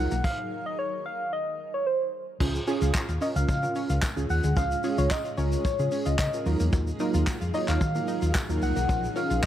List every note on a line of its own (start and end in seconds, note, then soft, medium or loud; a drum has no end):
0.00 0.22 D#3 medium
0.00 0.12 F#3 medium
0.00 0.22 F#3 medium
0.00 0.12 D#4 medium
0.00 0.20 D#4 medium
0.00 0.12 F4 medium
0.00 0.20 G#4 medium
0.00 0.13 A#4 medium
0.00 0.22 A#4 medium
0.00 0.26 F#5 loud
0.11 0.20 B1 medium
0.11 0.18 A#3 medium
0.11 closed hi-hat medium
0.11 shaker medium
0.24 0.68 F5 loud
0.24 kick loud
0.24 crash medium
0.66 0.80 D#5 loud
0.79 1.07 C#5 medium
1.06 1.34 F5 loud
1.33 1.76 D#5 loud
1.74 1.86 C#5 medium
1.87 2.25 C5 medium
2.40 2.57 C#2 loud
2.40 2.48 F3 medium
2.40 6.42 G#3 medium
2.40 2.59 C#4 medium
2.40 6.42 C#4 medium
2.40 2.60 F4 medium
2.40 2.60 G#4 loud
2.40 9.46 G#4 medium
2.40 kick loud
2.40 crash loud
2.55 closed hi-hat soft
2.55 shaker soft
2.67 3.05 C#4 loud
2.67 2.75 C#4 medium
2.67 3.05 F4 medium
2.67 3.05 G#4 loud
2.67 open hi-hat medium
2.67 shaker medium
2.82 2.90 C#2 loud
2.82 2.89 F4 medium
2.82 closed hi-hat medium
2.82 shaker medium
2.94 3.02 F5 loud
2.94 kick loud
2.94 clap loud
2.94 tambourine medium
2.94 shaker medium
3.09 3.17 D#2 medium
3.09 3.16 F4 medium
3.09 closed hi-hat medium
3.09 shaker medium
3.21 3.49 C#4 medium
3.21 3.29 C#4 medium
3.21 3.49 F4 medium
3.21 3.50 A#4 medium
3.21 3.28 D#5 medium
3.21 open hi-hat medium
3.21 shaker medium
3.36 3.44 C#2 medium
3.36 3.48 F5 loud
3.36 closed hi-hat medium
3.36 shaker medium
3.48 3.65 C#3 loud
3.48 3.56 F3 medium
3.48 3.99 F5 loud
3.48 kick loud
3.48 shaker medium
3.63 3.99 C#4 medium
3.63 3.99 F4 medium
3.63 3.99 A#4 medium
3.63 closed hi-hat medium
3.63 shaker medium
3.75 3.84 C#4 medium
3.75 open hi-hat medium
3.75 shaker medium
3.90 3.98 C#2 medium
3.90 3.97 F4 medium
3.90 closed hi-hat medium
3.90 shaker medium
4.02 4.10 F5 loud
4.02 kick loud
4.02 clap loud
4.02 tambourine loud
4.02 shaker medium
4.16 4.25 C#2 medium
4.16 4.45 C#4 medium
4.16 4.45 F4 medium
4.16 4.45 G#4 medium
4.16 closed hi-hat medium
4.16 shaker medium
4.30 4.39 D#2 medium
4.30 4.58 F#5 loud
4.30 open hi-hat medium
4.30 shaker medium
4.44 4.52 D2 medium
4.44 4.51 G#3 medium
4.44 closed hi-hat medium
4.44 shaker medium
4.56 4.65 F3 loud
4.56 4.76 C#4 medium
4.56 4.76 F4 medium
4.56 4.76 G#4 medium
4.56 5.00 F5 loud
4.56 kick loud
4.56 shaker medium
4.71 closed hi-hat medium
4.71 shaker medium
4.84 5.21 C#4 medium
4.84 4.92 C#4 medium
4.84 5.22 F4 medium
4.84 5.22 G#4 medium
4.84 open hi-hat medium
4.84 shaker medium
4.98 5.06 C#2 loud
4.98 5.05 F4 medium
4.98 5.13 C#5 medium
4.98 closed hi-hat medium
4.98 shaker medium
5.10 5.39 D#5 medium
5.10 5.18 F5 loud
5.10 kick loud
5.10 clap loud
5.10 tambourine medium
5.10 shaker medium
5.25 5.32 F4 medium
5.25 closed hi-hat medium
5.25 shaker medium
5.37 5.54 C#2 medium
5.37 5.45 C#4 medium
5.37 5.66 C#4 medium
5.37 5.66 F4 medium
5.37 5.66 A#4 medium
5.37 5.64 C#5 medium
5.37 open hi-hat medium
5.37 shaker medium
5.52 closed hi-hat medium
5.52 shaker medium
5.65 5.73 F3 medium
5.65 6.07 C#5 medium
5.65 kick loud
5.65 shaker medium
5.79 5.87 C#3 medium
5.79 6.16 C#4 medium
5.79 6.16 F4 medium
5.79 6.16 G#4 medium
5.79 closed hi-hat medium
5.79 shaker medium
5.92 6.00 C#4 medium
5.92 open hi-hat medium
5.92 shaker medium
6.05 6.14 C#2 loud
6.05 6.13 F4 medium
6.05 6.18 D#5 medium
6.05 closed hi-hat medium
6.05 shaker medium
6.19 6.28 C#3 loud
6.19 6.57 D#5 medium
6.19 6.26 F5 medium
6.19 kick loud
6.19 clap loud
6.19 tambourine medium
6.19 shaker medium
6.33 6.46 C#4 medium
6.33 6.45 F4 medium
6.33 6.45 A#4 medium
6.33 closed hi-hat medium
6.33 shaker medium
6.46 6.55 D#2 loud
6.46 8.87 D#3 medium
6.46 6.90 F#3 medium
6.46 8.87 F#3 medium
6.46 6.90 A#3 medium
6.46 8.87 D#4 medium
6.46 6.90 D#4 medium
6.46 6.90 F4 medium
6.46 8.87 A#4 medium
6.46 6.90 A#4 medium
6.46 open hi-hat medium
6.46 shaker medium
6.60 6.68 E2 medium
6.60 6.67 A#3 medium
6.60 closed hi-hat medium
6.60 shaker medium
6.73 6.89 D#2 loud
6.73 6.81 F#3 medium
6.73 kick loud
6.73 shaker medium
6.87 closed hi-hat soft
6.87 shaker soft
7.00 7.38 F#3 loud
7.00 7.38 A#3 medium
7.00 7.08 D#4 medium
7.00 7.38 D#4 medium
7.00 7.38 F4 medium
7.00 7.38 A#4 loud
7.00 open hi-hat medium
7.00 shaker medium
7.14 7.22 D#2 loud
7.14 7.21 F4 medium
7.14 closed hi-hat medium
7.14 shaker medium
7.27 7.35 F#4 medium
7.27 kick loud
7.27 clap loud
7.27 tambourine medium
7.27 shaker medium
7.41 7.49 F2 medium
7.41 7.48 F4 medium
7.41 closed hi-hat medium
7.41 shaker medium
7.54 7.82 F#3 medium
7.54 7.82 A#3 medium
7.54 7.62 D#4 medium
7.54 7.82 D#4 medium
7.54 7.82 F4 medium
7.54 7.82 C#5 medium
7.54 7.68 D#5 loud
7.54 open hi-hat medium
7.54 shaker medium
7.68 7.76 D#2 medium
7.68 7.80 F5 loud
7.68 clap medium
7.68 closed hi-hat medium
7.68 shaker medium
7.81 7.98 D#3 loud
7.81 7.89 F#3 medium
7.81 8.31 F5 loud
7.81 kick loud
7.81 shaker medium
7.95 8.32 F#3 medium
7.95 8.32 A#3 medium
7.95 8.32 D#4 medium
7.95 8.32 F4 medium
7.95 8.32 A#4 medium
7.95 closed hi-hat medium
7.95 shaker medium
8.08 8.16 D#4 medium
8.08 open hi-hat medium
8.08 shaker medium
8.22 8.30 D#2 medium
8.22 8.29 F4 medium
8.22 closed hi-hat medium
8.22 shaker medium
8.35 8.43 F#4 medium
8.35 kick loud
8.35 clap loud
8.35 tambourine medium
8.35 shaker medium
8.49 8.57 D#2 loud
8.49 8.77 F#3 medium
8.49 8.77 A#3 medium
8.49 8.77 D#4 medium
8.49 8.77 F4 medium
8.49 8.77 A#4 medium
8.49 closed hi-hat medium
8.49 shaker medium
8.62 8.71 C2 medium
8.62 9.18 F#5 loud
8.62 open hi-hat medium
8.62 shaker medium
8.76 8.84 B1 medium
8.76 8.83 A#3 medium
8.76 closed hi-hat medium
8.76 shaker medium
8.89 9.06 A#1 loud
8.89 8.97 F3 loud
8.89 9.46 A#3 medium
8.89 9.08 C#4 medium
8.89 9.46 C#4 medium
8.89 9.08 F4 medium
8.89 9.08 A#4 medium
8.89 kick loud
8.89 shaker medium
9.04 closed hi-hat medium
9.04 shaker medium
9.15 9.46 C#4 medium
9.15 9.24 C#4 medium
9.15 9.46 F4 medium
9.15 9.46 A#4 medium
9.15 9.43 F5 loud
9.15 open hi-hat medium
9.15 shaker medium
9.30 9.38 A#1 loud
9.30 9.37 F4 medium
9.30 closed hi-hat medium
9.30 shaker medium